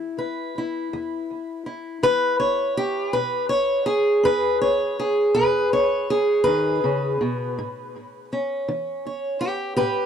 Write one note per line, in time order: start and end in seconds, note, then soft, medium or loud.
0.00 0.47 E3 medium
0.00 0.55 E4 soft
0.19 2.02 B4 soft
0.58 1.65 E4 soft
0.93 1.59 E2 medium
1.66 3.10 E4 soft
2.03 2.69 E3 medium
2.03 2.39 B4 loud
2.40 3.13 C#5 medium
2.77 3.14 G4 medium
3.13 3.81 B2 medium
3.13 3.49 B4 medium
3.49 4.24 C#5 medium
3.86 4.98 G#4 medium
4.23 4.91 D#4 medium
4.23 4.61 B4 medium
4.61 5.34 C#5 medium
5.00 6.09 G#4 medium
5.35 6.02 B2 medium
5.35 5.72 B4 medium
5.73 6.43 C#5 medium
6.10 7.21 G#4 medium
6.44 6.83 D#3 medium
6.44 8.67 B4 medium
6.84 7.20 C#3 medium
7.21 7.58 B2 medium
7.59 8.25 A2 medium
8.33 10.06 C#4 soft
8.68 9.35 E3 medium
9.07 9.42 C#5 soft
9.41 9.75 G4 medium
9.41 9.76 B4 medium
9.76 10.06 G4 medium
9.76 10.06 B4 medium
9.81 10.06 A2 medium